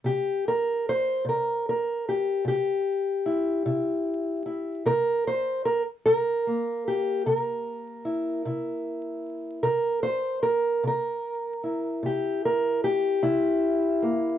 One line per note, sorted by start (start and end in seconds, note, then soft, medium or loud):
0.04 0.76 C3 medium
0.04 0.45 G4 medium
0.48 0.86 A#4 medium
0.89 1.27 C5 loud
1.25 1.97 C3 medium
1.29 1.67 A#4 medium
1.69 2.07 A#4 medium
2.09 2.47 G4 medium
2.45 3.17 C3 medium
2.45 4.86 G4 medium
3.26 3.65 E4 soft
3.66 4.37 C3 medium
3.66 4.45 E4 soft
4.46 4.89 E4 soft
4.85 5.57 C3 medium
4.85 5.26 A#4 loud
5.27 5.65 C5 medium
5.65 5.81 A#4 medium
6.06 6.77 C3 medium
6.06 6.85 A#4 medium
6.47 14.01 A#3 soft
6.88 7.26 G4 medium
7.26 7.97 C3 medium
7.26 9.62 A#4 medium
8.05 8.45 E4 soft
8.45 9.17 C3 medium
8.45 9.66 E4 soft
9.63 10.36 C3 medium
9.63 10.02 A#4 loud
10.03 10.42 C5 loud
10.43 10.83 A#4 medium
10.83 11.56 C3 medium
10.83 12.05 A#4 medium
11.64 13.21 E4 soft
12.03 12.75 C3 medium
12.03 12.45 G4 medium
12.45 12.84 A#4 medium
12.84 14.04 G4 medium
13.22 13.95 C3 medium
13.22 14.38 E4 medium
14.02 14.38 A#3 soft